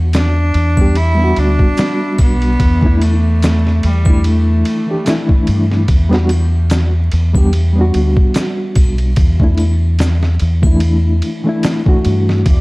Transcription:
0.00 0.51 E2 medium
0.13 0.98 D4 loud
0.13 snare loud
0.13 ride medium
0.13 shaker medium
0.54 1.33 E2 medium
0.54 ride medium
0.77 0.94 G3 medium
0.77 0.95 B3 medium
0.77 0.95 D4 medium
0.77 kick medium
0.77 triangle medium
0.81 0.96 G4 medium
0.95 1.40 E4 loud
0.95 ride medium
1.15 2.56 G3 medium
1.15 2.58 B3 medium
1.21 2.59 D4 medium
1.21 2.61 F#4 loud
1.36 1.57 D2 medium
1.36 2.23 D4 loud
1.36 ride medium
1.59 kick medium
1.77 snare loud
1.77 ride medium
1.77 shaker medium
2.18 2.56 B1 medium
2.18 3.04 B3 loud
2.18 kick medium
2.18 ride medium
2.18 triangle medium
2.42 ride soft
2.60 3.80 E2 medium
2.60 kick loud
2.60 ride medium
2.81 3.11 E3 medium
2.81 3.12 A3 medium
2.81 3.13 D4 medium
2.81 kick medium
2.86 3.13 E4 medium
3.01 3.87 A3 medium
3.01 ride medium
3.01 triangle medium
3.42 snare loud
3.42 ride medium
3.42 shaker medium
3.67 snare soft
3.83 4.62 E2 medium
3.83 4.26 G3 medium
3.83 ride medium
4.04 4.82 E3 medium
4.04 4.83 A3 medium
4.04 4.83 D4 medium
4.04 kick medium
4.04 triangle medium
4.09 4.84 E4 medium
4.24 5.45 A3 medium
4.24 ride medium
4.65 ride medium
4.86 5.01 E3 medium
4.86 5.02 A3 medium
4.86 5.03 D4 medium
4.91 5.04 G4 medium
5.05 5.86 E3 loud
5.05 5.87 A3 medium
5.05 5.87 D4 medium
5.05 snare loud
5.05 ride medium
5.05 shaker medium
5.09 5.88 E4 loud
5.29 kick medium
5.47 5.85 G2 medium
5.47 ride medium
5.72 snare soft
5.88 7.09 E2 medium
5.88 kick loud
5.88 ride medium
6.09 6.27 G3 loud
6.09 6.28 B3 medium
6.09 6.29 D4 medium
6.09 snare soft
6.14 6.30 F#4 loud
6.29 ride medium
6.29 triangle medium
6.70 snare loud
6.70 ride medium
6.70 shaker medium
7.12 7.91 E2 medium
7.12 ride medium
7.33 7.51 G3 medium
7.33 7.52 B3 medium
7.33 7.52 D4 medium
7.33 kick medium
7.33 triangle medium
7.38 7.53 G4 medium
7.53 ride medium
7.73 9.14 G3 medium
7.73 9.15 B3 medium
7.78 9.16 D4 medium
7.78 9.18 F#4 medium
7.94 8.15 D2 medium
7.94 ride medium
8.17 kick medium
8.34 snare loud
8.34 ride medium
8.34 shaker medium
8.75 9.13 B1 medium
8.75 kick medium
8.75 ride medium
8.75 triangle medium
8.98 ride soft
9.16 10.37 E2 medium
9.16 kick loud
9.16 ride medium
9.39 9.69 E3 medium
9.39 9.70 A3 medium
9.39 9.70 D4 medium
9.39 kick medium
9.44 9.71 E4 medium
9.57 ride medium
9.57 triangle soft
9.99 snare loud
9.99 ride medium
9.99 shaker medium
10.23 snare soft
10.40 11.20 E2 medium
10.40 ride medium
10.62 11.40 E3 medium
10.62 11.40 A3 medium
10.62 11.41 D4 medium
10.62 kick loud
10.62 triangle medium
10.67 11.42 E4 medium
10.80 ride medium
11.22 ride medium
11.44 11.81 E3 medium
11.44 11.81 A3 medium
11.44 11.82 D4 medium
11.49 11.83 E4 loud
11.63 snare loud
11.63 ride medium
11.63 shaker medium
11.85 12.43 E3 medium
11.85 12.44 A3 medium
11.85 12.44 D4 medium
11.85 12.45 F#4 medium
11.85 kick medium
12.05 12.42 G2 medium
12.05 ride medium
12.29 snare soft
12.46 12.61 E2 loud
12.46 12.61 G3 medium
12.46 12.61 E5 medium
12.46 12.61 D6 medium
12.46 kick loud
12.46 ride medium

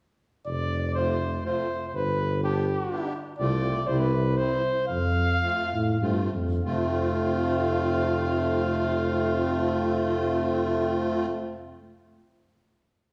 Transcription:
0.46 1.43 F1 medium
0.46 0.93 D5 medium
0.95 1.18 A3 soft
0.95 1.18 C4 soft
0.95 1.18 F4 medium
0.95 1.41 C5 medium
1.44 1.67 A3 medium
1.44 1.68 C4 soft
1.44 1.68 F4 medium
1.44 1.88 C5 medium
1.88 1.97 C5 medium
1.95 2.89 G1 medium
1.95 2.43 B4 medium
2.43 2.65 B3 medium
2.43 2.65 D4 soft
2.43 2.65 G4 medium
2.43 3.13 G4 medium
2.90 3.13 B3 soft
2.90 3.13 D4 soft
2.90 3.13 G4 medium
3.39 3.72 C2 medium
3.39 3.79 A3 medium
3.39 3.79 C4 medium
3.39 3.79 F4 medium
3.39 3.88 D5 medium
3.87 4.54 C2 medium
3.87 4.12 G3 medium
3.87 4.12 C4 medium
3.87 4.12 E4 medium
3.87 4.02 C5 medium
4.00 4.39 B4 medium
4.37 4.62 G3 medium
4.37 4.62 C4 medium
4.37 4.62 E4 medium
4.37 4.87 C5 medium
4.88 5.44 F2 medium
4.88 6.29 F5 medium
5.43 5.70 A3 medium
5.43 5.70 C4 soft
5.43 5.70 F4 medium
5.73 6.00 A2 medium
6.02 6.30 G2 medium
6.02 6.31 A3 medium
6.02 6.31 C4 medium
6.02 6.31 F4 medium
6.33 6.62 F2 medium
6.64 11.26 F1 medium
6.64 11.26 A3 medium
6.64 11.27 C4 medium
6.64 11.26 F4 medium
6.64 11.26 F5 medium

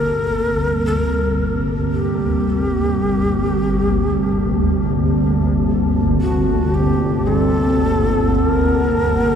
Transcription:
0.00 9.35 G1 medium
0.00 9.35 D2 medium
0.00 7.21 G3 medium
0.00 9.35 A#3 medium
0.00 9.35 C4 medium
0.00 0.85 A#4 loud
0.00 9.35 A5 medium
0.86 0.97 A4 medium
0.97 1.62 A#4 medium
1.93 5.10 G4 medium
6.21 6.76 F#4 medium
6.74 7.29 G4 medium
6.90 9.35 F#5 medium
7.27 9.35 G3 soft
7.27 8.35 A4 loud
8.35 8.48 A4 loud
8.48 9.35 A#4 loud

